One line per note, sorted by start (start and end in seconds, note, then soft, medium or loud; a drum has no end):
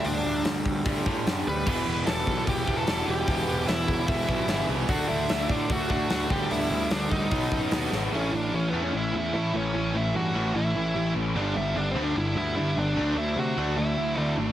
0.00 0.84 G2 medium
0.00 0.85 D3 medium
0.00 0.88 G3 loud
0.05 0.20 D2 medium
0.05 0.44 D4 medium
0.05 0.43 D5 medium
0.05 open hi-hat medium
0.25 0.40 D2 loud
0.45 0.60 D2 medium
0.45 snare loud
0.45 open hi-hat medium
0.66 0.81 D2 medium
0.66 kick medium
0.85 1.01 D2 medium
0.85 1.04 G2 medium
0.85 1.05 D3 medium
0.85 1.05 G3 medium
0.85 kick loud
0.85 open hi-hat medium
1.06 1.47 G2 medium
1.06 1.21 A2 medium
1.06 1.46 D3 medium
1.06 1.69 G3 medium
1.06 kick medium
1.26 1.41 F#2 medium
1.26 snare loud
1.26 open hi-hat medium
1.47 1.62 D2 medium
1.47 1.66 B4 medium
1.47 1.66 B5 loud
1.66 1.82 E1 medium
1.66 2.66 E2 medium
1.66 2.67 B2 medium
1.66 2.06 E3 medium
1.66 2.65 E3 loud
1.66 2.06 G3 loud
1.66 2.07 B3 loud
1.66 2.07 E4 loud
1.66 2.05 B4 medium
1.66 2.06 B5 medium
1.66 kick loud
1.66 crash loud
1.87 2.02 E1 loud
2.06 2.22 E1 medium
2.06 2.26 E3 medium
2.06 2.27 G3 medium
2.06 2.27 B3 loud
2.06 2.28 E4 loud
2.06 2.44 A4 medium
2.06 2.44 A5 medium
2.06 snare loud
2.06 open hi-hat medium
2.27 2.42 B1 medium
2.27 2.45 E3 medium
2.27 2.46 G3 medium
2.27 2.46 B3 loud
2.27 2.47 E4 loud
2.27 kick medium
2.46 2.62 E1 medium
2.46 2.86 E3 loud
2.46 2.86 G3 loud
2.46 2.86 B3 loud
2.46 2.87 E4 loud
2.46 2.76 G4 medium
2.46 2.79 G5 medium
2.46 kick loud
2.46 open hi-hat medium
2.66 2.83 E1 medium
2.66 2.85 E2 medium
2.66 2.87 B2 medium
2.66 2.86 E3 loud
2.66 kick medium
2.77 3.05 A4 medium
2.77 3.09 A5 loud
2.86 3.03 E1 medium
2.86 3.26 E2 medium
2.86 3.27 B2 medium
2.86 3.05 E3 medium
2.86 3.28 E3 medium
2.86 3.06 G3 medium
2.86 3.06 B3 medium
2.86 3.06 E4 medium
2.86 snare loud
2.86 open hi-hat medium
3.06 3.23 E1 medium
3.06 3.26 E3 medium
3.06 3.27 G3 medium
3.06 3.27 B3 medium
3.06 3.27 E4 loud
3.06 3.64 G4 medium
3.06 3.67 G5 loud
3.27 3.43 E1 medium
3.27 4.27 E2 loud
3.27 4.28 B2 medium
3.27 3.66 E3 medium
3.27 4.26 E3 loud
3.27 3.66 G3 loud
3.27 3.67 B3 loud
3.27 3.67 E4 loud
3.27 kick loud
3.27 open hi-hat medium
3.48 3.63 E1 loud
3.67 3.83 E1 medium
3.67 3.86 E3 medium
3.67 3.87 G3 medium
3.67 3.87 B3 loud
3.67 3.87 E4 loud
3.67 4.06 E4 medium
3.67 4.07 E5 loud
3.67 snare loud
3.67 open hi-hat medium
3.87 4.03 E1 loud
3.87 4.07 E3 medium
3.87 4.07 G3 medium
3.87 4.07 B3 loud
3.87 4.08 E4 loud
3.87 kick medium
4.08 4.23 E1 loud
4.08 4.48 E3 loud
4.08 4.48 G3 loud
4.08 4.49 B3 loud
4.08 4.49 E4 loud
4.08 4.65 E4 medium
4.08 4.65 E5 loud
4.08 kick loud
4.08 open hi-hat medium
4.27 4.44 B1 medium
4.27 4.46 E2 medium
4.27 4.48 B2 medium
4.27 4.47 E3 medium
4.27 kick medium
4.48 4.63 G1 loud
4.48 4.87 E2 medium
4.48 4.88 B2 medium
4.48 4.68 E3 medium
4.48 4.89 E3 loud
4.48 4.68 G3 loud
4.48 4.69 B3 loud
4.48 4.69 E4 medium
4.48 snare loud
4.48 open hi-hat medium
4.69 4.84 C2 medium
4.69 4.88 E3 medium
4.69 4.88 G3 medium
4.69 4.89 B3 medium
4.69 4.89 E4 medium
4.88 5.04 D2 loud
4.88 5.88 D3 loud
4.88 5.28 D3 loud
4.88 5.29 F#3 loud
4.88 5.89 A3 medium
4.88 5.29 A3 loud
4.88 5.29 D4 loud
4.88 5.88 D4 loud
4.88 5.08 F#4 medium
4.88 5.08 F#5 medium
4.88 kick loud
4.88 open hi-hat medium
5.09 5.25 D2 medium
5.09 5.47 E4 medium
5.09 5.51 E5 loud
5.29 5.45 D2 medium
5.29 5.49 D3 medium
5.29 5.49 F#3 loud
5.29 5.49 A3 medium
5.29 5.50 D4 loud
5.29 snare loud
5.29 open hi-hat medium
5.49 5.64 A2 loud
5.49 5.68 D3 medium
5.49 5.69 F#3 medium
5.49 5.69 A3 loud
5.49 5.70 D4 loud
5.49 5.69 D4 medium
5.49 5.71 D5 medium
5.49 kick medium
5.70 5.85 D2 medium
5.70 6.09 D3 loud
5.70 6.09 F#3 loud
5.70 6.09 A3 loud
5.70 6.09 D4 loud
5.70 5.90 F#4 medium
5.70 5.90 F#5 medium
5.70 kick loud
5.70 open hi-hat medium
5.89 6.05 D2 medium
5.89 6.08 D3 medium
5.89 6.09 A3 medium
5.89 6.08 D4 medium
5.89 6.29 F#4 medium
5.89 6.30 F#5 loud
5.89 kick medium
6.09 6.25 D2 loud
6.09 6.29 D3 medium
6.09 6.29 D3 loud
6.09 6.29 F#3 medium
6.09 6.29 A3 loud
6.09 6.30 A3 medium
6.09 6.29 D4 loud
6.09 6.30 D4 medium
6.09 snare loud
6.09 open hi-hat medium
6.29 6.45 D2 medium
6.29 7.29 G2 medium
6.29 6.49 D3 medium
6.29 7.30 D3 loud
6.29 6.49 G3 loud
6.29 7.31 G3 loud
6.29 6.50 B3 loud
6.29 6.50 D4 loud
6.29 6.50 G4 medium
6.29 6.51 G5 loud
6.29 kick loud
6.50 6.66 D2 loud
6.50 6.89 D3 medium
6.50 6.89 G3 loud
6.50 6.90 B3 loud
6.50 6.90 D4 loud
6.50 6.89 E4 medium
6.50 6.92 E5 medium
6.50 open hi-hat medium
6.70 6.85 D2 loud
6.90 7.06 D2 medium
6.90 7.10 D3 loud
6.90 7.11 G3 medium
6.90 7.11 B3 loud
6.90 7.11 D4 loud
6.90 7.11 D4 medium
6.90 7.11 D5 medium
6.90 snare loud
6.90 open hi-hat medium
7.11 7.26 D2 medium
7.11 7.30 D3 medium
7.11 7.30 G3 medium
7.11 7.30 B3 loud
7.11 7.31 D4 loud
7.11 7.88 D#4 medium
7.11 7.88 D#5 medium
7.11 kick medium
7.31 7.46 B1 medium
7.31 8.10 B2 medium
7.31 7.71 B2 loud
7.31 7.72 F#3 loud
7.31 8.11 F#3 medium
7.31 7.72 B3 loud
7.31 8.12 B3 loud
7.31 7.72 D#4 loud
7.31 kick loud
7.31 open hi-hat medium
7.52 7.67 F#2 medium
7.52 kick loud
7.71 7.87 D#2 medium
7.71 7.91 B2 medium
7.71 7.92 F#3 medium
7.71 7.92 B3 loud
7.71 7.93 D#4 medium
7.71 snare loud
7.71 open hi-hat medium
7.92 8.07 G#1 loud
7.92 8.11 B2 medium
7.92 8.11 F#3 loud
7.92 8.11 B3 medium
7.92 8.12 D#4 medium
7.92 snare medium
8.12 8.31 A1 medium
8.12 8.75 A2 medium
8.12 8.31 A2 medium
8.12 8.31 E3 medium
8.12 8.74 E3 medium
8.12 8.73 A3 medium
8.12 8.31 A3 loud
8.12 8.73 C#4 medium
8.12 8.33 C#4 medium
8.12 8.73 E4 medium
8.16 8.35 C#5 medium
8.32 8.51 A1 medium
8.32 8.50 A2 medium
8.32 8.50 E3 medium
8.32 8.52 D4 medium
8.37 8.55 D5 medium
8.52 8.71 A1 medium
8.52 8.70 A2 medium
8.52 8.71 E3 medium
8.52 8.66 C#4 medium
8.52 8.70 C#5 medium
8.68 8.80 B3 medium
8.68 8.82 B4 medium
8.73 8.91 E2 medium
8.73 8.91 A2 medium
8.73 9.31 A2 medium
8.73 8.92 E3 loud
8.73 9.32 E3 medium
8.73 8.92 A3 medium
8.73 9.32 A3 medium
8.73 9.32 C#4 medium
8.73 9.32 E4 medium
8.82 8.93 C#4 medium
8.82 8.97 C#5 medium
8.93 9.11 A1 medium
8.93 9.11 A2 medium
8.93 9.11 E3 medium
8.93 9.13 E4 medium
8.97 9.16 E5 medium
9.13 9.32 E2 medium
9.13 9.31 A2 medium
9.13 9.31 E3 medium
9.13 9.52 E4 medium
9.18 9.57 E5 medium
9.33 9.71 A2 medium
9.33 9.51 A2 medium
9.33 9.52 A2 medium
9.33 9.71 E3 medium
9.33 9.51 E3 medium
9.33 9.72 A3 medium
9.33 9.73 C#4 medium
9.33 9.73 E4 medium
9.53 9.72 A1 medium
9.53 9.71 A2 medium
9.53 9.72 E3 medium
9.53 9.92 C#4 medium
9.53 9.96 C#5 medium
9.72 9.92 A1 medium
9.72 10.32 A2 medium
9.72 9.92 A2 medium
9.72 10.32 E3 medium
9.72 9.92 E3 medium
9.72 10.33 A3 medium
9.72 10.33 C#4 medium
9.72 10.31 E4 medium
9.94 10.12 A1 medium
9.94 10.12 A2 medium
9.94 10.12 E3 medium
9.94 10.13 E4 medium
9.94 10.16 E5 medium
10.14 10.32 G2 medium
10.14 10.32 A2 medium
10.14 10.32 E3 medium
10.14 10.52 F#4 medium
10.14 10.57 F#5 medium
10.33 10.53 A1 medium
10.33 10.53 A2 medium
10.33 10.93 A2 medium
10.33 10.94 E3 medium
10.33 10.54 E3 medium
10.33 10.93 A3 medium
10.33 10.54 A3 medium
10.33 10.93 C#4 medium
10.33 10.93 E4 medium
10.54 10.73 A1 medium
10.54 10.73 A2 medium
10.54 10.73 E3 medium
10.54 11.11 E4 medium
10.54 11.12 E5 medium
10.75 10.93 A1 medium
10.75 10.93 A2 medium
10.75 10.93 E3 medium
10.95 11.14 A1 medium
10.95 11.34 A2 medium
10.95 11.13 A2 medium
10.95 11.34 E3 medium
10.95 11.14 E3 medium
10.95 11.35 A3 medium
10.95 11.35 C#4 medium
10.95 11.35 E4 medium
11.15 11.33 A1 medium
11.15 11.33 A2 medium
11.15 11.33 E3 medium
11.34 11.54 G1 medium
11.34 11.94 G2 medium
11.34 11.54 G2 medium
11.34 11.94 D3 medium
11.34 11.54 D3 loud
11.34 11.94 G3 loud
11.34 11.55 G3 loud
11.34 11.94 B3 loud
11.34 11.54 D4 medium
11.34 11.94 D4 loud
11.34 11.57 D5 medium
11.55 11.74 G1 medium
11.55 11.73 G2 medium
11.55 11.73 D3 medium
11.55 11.75 E4 medium
11.55 11.77 E5 medium
11.75 11.94 G1 medium
11.75 11.94 G2 medium
11.75 11.94 D3 medium
11.75 11.88 D4 medium
11.75 11.91 D5 medium
11.91 12.02 C4 medium
11.91 12.54 D4 medium
11.91 12.04 C5 medium
11.95 12.14 D2 medium
11.95 12.15 G2 medium
11.95 12.54 G2 medium
11.95 12.15 D3 loud
11.95 12.54 D3 medium
11.95 12.55 G3 medium
11.95 12.15 G3 loud
11.95 12.55 B3 medium
12.03 12.15 D4 medium
12.03 12.18 D5 medium
12.15 12.34 G1 medium
12.15 12.34 G2 medium
12.15 12.34 D3 medium
12.15 12.35 E4 medium
12.15 12.37 E5 medium
12.35 12.54 D2 medium
12.35 12.54 G2 medium
12.35 12.54 D3 medium
12.35 12.75 E4 medium
12.35 12.79 E5 loud
12.55 12.74 G2 medium
12.55 12.95 G2 medium
12.55 12.75 G2 medium
12.55 12.95 D3 medium
12.55 12.75 D3 medium
12.55 12.95 G3 medium
12.55 12.96 B3 medium
12.55 12.96 D4 medium
12.76 12.98 G1 medium
12.76 12.95 G2 medium
12.76 12.95 D3 medium
12.76 13.15 D4 medium
12.76 13.19 D5 medium
12.96 13.15 D2 medium
12.96 13.55 D3 medium
12.96 13.15 D3 medium
12.96 13.56 F#3 loud
12.96 13.56 A3 loud
12.96 13.16 A3 loud
12.96 13.54 D4 loud
12.96 13.16 D4 loud
13.15 13.34 D2 loud
13.15 13.35 D3 medium
13.15 13.35 A3 medium
13.15 13.36 E4 medium
13.15 13.38 E5 medium
13.36 13.55 C3 medium
13.36 13.55 D3 medium
13.36 13.56 A3 medium
13.36 13.76 F#4 medium
13.36 13.78 F#5 medium
13.56 13.76 D2 medium
13.56 13.76 D3 medium
13.56 14.15 D3 medium
13.56 14.16 F#3 medium
13.56 14.17 A3 medium
13.56 13.76 A3 medium
13.56 14.16 D4 medium
13.56 13.77 D4 loud
13.76 13.95 D2 medium
13.76 13.95 D3 medium
13.76 13.96 A3 medium
13.76 14.34 E4 medium
13.76 14.21 E5 medium
13.97 14.16 D2 medium
13.97 14.16 D3 medium
13.97 14.16 A3 medium
14.17 14.36 D2 medium
14.17 14.52 D3 medium
14.17 14.35 D3 medium
14.17 14.52 F#3 medium
14.17 14.36 A3 medium
14.17 14.52 A3 medium
14.17 14.52 D4 medium
14.21 14.34 D5 medium
14.37 14.52 G#1 medium
14.37 14.52 D3 medium
14.37 14.52 A3 medium